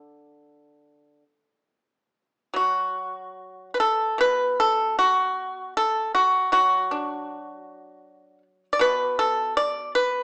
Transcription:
Already playing: D3
2.54 F#3 F#4
3.74 B4
3.80 A4
4.18 B2 B4
4.60 A4
4.99 F#4
5.77 A4
6.15 F#4
6.52 F#3 F#4
6.91 D4
8.73 D5
8.79 B2 B4
9.19 A4
9.57 D5
9.95 B4

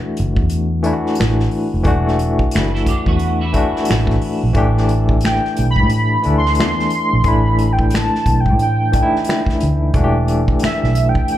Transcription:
Already playing: E3 A3 D4 F#4
0.17 F#1, closed hi-hat
0.36 E2, kick
0.50 closed hi-hat
0.82 E3 A3 D4 E4, closed hi-hat
0.93 F#4
1.06 snare
1.15 closed hi-hat
1.20 A1, finger snap, snare
1.39 snare
1.51 open hi-hat
1.74 F1
1.84 E1 E3 A3 D4, kick, closed hi-hat
1.88 F#4
2.08 snare
2.19 closed hi-hat
2.39 kick
2.51 F#1 F#4 B4, snare, closed hi-hat
2.56 finger snap
2.75 E4 A4, snare
2.86 D4 G4, kick, closed hi-hat
3.06 E2 B3 F#4, kick
3.19 closed hi-hat
3.41 B3 E4
3.52 E3 A3 D4 F#4, kick, closed hi-hat
3.76 snare
3.85 closed hi-hat
3.90 A1, finger snap, snare
4.07 kick, snare
4.21 open hi-hat
4.43 A#1
4.54 A1 E3 A3 D4 G4, kick, closed hi-hat
4.77 snare
4.89 closed hi-hat
5.09 kick
5.21 snare, closed hi-hat
5.25 G5, finger snap
5.45 snare
5.57 B1, closed hi-hat
5.71 B5
5.76 A2, kick
5.90 B5, closed hi-hat
6.22 D2 E3 A3 D4, closed hi-hat
6.26 A4
6.38 C6
6.46 snare
6.55 closed hi-hat
6.60 E2 C6, finger snap, snare
6.79 snare
6.90 closed hi-hat
7.13 A#1
7.24 A1 E3 A3 D4 E4, kick, closed hi-hat
7.28 B5
7.59 closed hi-hat
7.73 G5
7.79 kick
7.90 snare, closed hi-hat
7.95 A5, finger snap
8.15 snare
8.26 B1, kick, closed hi-hat
8.40 G5
8.46 A2, kick
8.59 G5, closed hi-hat
8.92 E3 A3 D4, kick, closed hi-hat
8.96 D#4
9.03 E4
9.15 snare
9.24 closed hi-hat
9.29 finger snap, snare
9.46 muted fingered electric bass stroke, kick, snare
9.60 D2, closed hi-hat
9.93 E1 E3 A3 D4, kick, closed hi-hat
9.97 F#4
10.04 G4
10.28 closed hi-hat
10.48 kick
10.59 snare, closed hi-hat
10.64 E5, finger snap, muted fingered electric bass stroke
10.84 B1, snare
10.95 closed hi-hat
11.09 G5
11.15 kick
11.28 G5, closed hi-hat

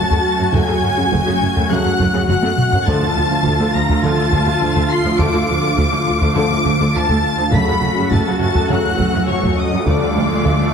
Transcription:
Already playing: A3 C#4 F#4 F#5 A5 A6
0.10 F#2 F#3 A3, taiko
0.39 F#2 F#3 A3
0.53 F#1 F#2 C#3 F#3 A3 A4 G#5 G#6, taiko
0.68 F#2 C#3 F#4
0.82 F#1 F#2 F#3 A3
0.96 F#2 C#3 C#4
1.11 F#1 F#2 F#3 A3, taiko
1.27 F#2 C#3 C#4
1.41 F#1 F#2 F#3 C#4
1.54 F#2 F#3 A3, taiko
1.68 F#1 F#2 C#3 F#3 A3 F#4 A4 F#5 F#6, taiko mid
1.84 F#2 F#3 A3
1.98 F#1 F#2 F#3 A3, taiko
2.13 F#2 C#3 A3
2.27 F#1 F#2 F#3 F#4 F#5 F#6, taiko mid
2.42 F#2 F#3 A3, taiko high
2.58 taiko low-mid
2.72 F#2 F#3 A3, taiko low
2.86 D2 D3 F3 A3 D4 F4 A4 F5 A5 A6, taiko
3.01 D2 D3 D4
3.15 D2 F3
3.30 D2 D3 A3
3.44 D2 D3 A3, taiko
3.59 D2 D3 A3
3.74 D2 F3 A3 A#5 A#6
3.88 D2 D3 A3, taiko
4.01 D2 D3 F3 A3 D4 A4 A5 A6, taiko mid
4.17 D2 F3
4.31 D2 D3 A3, taiko
4.46 D2 D3 F3
4.61 D2 F3 D4
4.74 D2 D3 A3, taiko
4.90 C6 C7
5.04 D2 F3
5.17 D2 D3 F3 A3 A4 D6 D7, taiko
5.32 D2 D3 D4
5.47 D2 F3
5.61 D2 D3 A3
5.77 D2 D3 A3, taiko
5.90 D2 D3 A3
6.06 D2 F3 A3
6.20 D2 D3 A3, taiko
6.34 D2 D3 F3 A3 D4 A4 D6 D7, taiko mid
6.49 D2 F3
6.63 D2 D3 A3, taiko
6.79 D2 D3 F3
6.93 D2 F3 D4 A5 A6
7.08 D2 D3 A3, taiko
7.37 D2 F3
7.52 F#1 F#2 C#3 F#3 A3 C#4 F#4 A4 F#5 B5 B6, taiko, riser
7.66 F#2 C#3 F#4
7.81 F#1 F#2 F#3 A3
7.96 F#2 C#3 C#4
8.11 F#1 F#2 F#3 A3 A5 A6, taiko
8.26 F#2 C#3 C#4
8.40 F#1 F#2 F#3 C#4 A5 A6
8.55 F#2 F#3 A3, taiko
8.69 F#1 F#2 C#3 F#3 A3 F#4 A4 F#5 F#6, taiko mid
8.83 F#2 F#3 A3
8.98 F#1 F#2 F#3 A3, taiko
9.13 F#2 C#3 A3
9.26 F#1 F#2 F#3 F#4 C#5 C#6
9.41 F#2 F#3 A3, taiko
9.57 D#5 D#6
9.72 F#2 F#3 A3
9.84 D2 D3 F3 A3 D4 F4 A4 D5 F5 D6, taiko
10.01 D2 D3 D4
10.15 D2 F3
10.30 D2 D3 A3
10.44 D2 D3 A3, taiko
10.59 D2 D3 A3

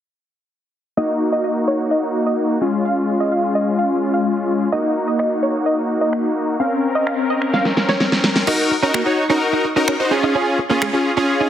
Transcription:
0.97 A#3 D#4 F#4 D#5
1.32 D#5
1.44 D#5
1.68 C#5
1.91 D#5
2.26 D#5
2.61 G#3 C#4 F4
2.85 F5
3.20 D#5
3.32 F5
3.55 D#5
3.79 F5
4.14 F5
4.72 A#3 D#4 F#4 D#5
5.08 D#5
5.19 D#5, finger snap
5.43 C#5
5.66 D#5
6.01 D#5
6.13 finger snap
6.60 C4 C#4 A#4 F5
6.95 D#5
7.06 F5, finger snap
7.30 D#5
7.42 finger snap
7.54 F5, snare
7.65 snare
7.77 snare
7.89 C#5, snare
8.00 snare
8.12 snare
8.24 snare
8.36 snare
8.47 D#4 F#4 A#4, crash
8.71 muted clean electric guitar stroke
8.82 C#4 D#4 F#4 A#4
8.94 A#3, finger snap
9.06 D#4 F#4 C#5, muted clean electric guitar stroke
9.29 C#4 D#4 F#4 A#4
9.53 D#4
9.64 muted clean electric guitar stroke
9.76 C#4 D#4 F#4 A#4
9.88 C#4, finger snap
10.00 D#4 F#4 C5, muted clean electric guitar stroke
10.11 C#4 F4 G#4
10.23 D#4
10.35 C#4
10.59 muted clean electric guitar stroke
10.69 A#3 C#4 F4 G#4
10.82 G#3, finger snap
10.93 C#4 F4 G#4, muted clean electric guitar stroke
11.17 C#4 F4 G#4
11.40 D#4

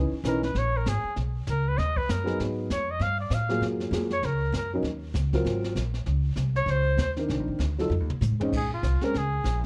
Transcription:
Already playing: C#2 E3 C#4 D#4 B4
0.12 muted upright bass stroke
0.24 B1 E3 C#4 D#4 A#4 B4, snare, hi-hat pedal
0.43 B4, snare
0.55 A#1 C#5, brush sweep, snare
0.77 A#4
0.86 G#1 G#4, snare, hi-hat pedal
1.04 muted upright bass stroke
1.16 B1, brush sweep, snare
1.47 C#2 A#4, snare, hi-hat pedal
1.68 B4
1.78 D#2 D#5, brush sweep, snare
1.96 B4, kick
2.09 F#2 A#4, snare, hi-hat pedal
2.24 F#3 B3 D#4 G#4, snare
2.40 G#2, brush sweep, snare
2.70 F2 C#5, snare, hi-hat pedal
2.91 D#5
3.00 G2 F5, brush sweep, snare
3.20 D5
3.30 A2 F5, snare, hi-hat pedal
3.49 F#3 A#3 F4 G#4, snare
3.61 F#2, brush sweep, snare
3.80 snare
3.91 F2 F#3 A#3 F4 G#4, snare, hi-hat pedal
4.10 C#5, snare
4.23 C#2 A#4, brush sweep, snare
4.52 F#2, snare, hi-hat pedal
4.57 A#4
4.74 F#3 C#4 D#4 A#4
4.83 D#2, brush sweep, snare
5.14 C#2, snare, hi-hat pedal
5.33 F#3 C4 F4 A#4, kick, snare
5.45 G#1, brush sweep, snare
5.64 snare
5.75 A#1, snare, hi-hat pedal
5.94 snare
6.06 C#2, brush sweep, snare
6.36 C2, snare, hi-hat pedal
6.56 C#5, snare
6.66 C#2, brush sweep, snare
6.70 C5
6.97 D#2, snare, hi-hat pedal
7.01 C5
7.17 D#3 C4 D4 A#4, snare
7.28 C2, brush sweep, snare
7.39 A#1
7.48 G1
7.59 D2, snare, hi-hat pedal
7.78 F#3 D#4 F4 A4, snare
7.90 F2, mid tom
8.00 D#2
8.10 C2, mid tom
8.21 A2, hi-hat pedal, mid tom
8.31 F2
8.40 D#2 G#3 C4 C#4 D#4, floor tom
8.53 A#1, brush sweep, kick, snare, crash
8.57 G#4
8.74 F4
8.83 C2, snare, hi-hat pedal
9.01 G#3 C4 C#4 A#4, muted upright bass stroke, snare
9.14 C#2 G#4, brush sweep, snare
9.44 A#1, snare, hi-hat pedal

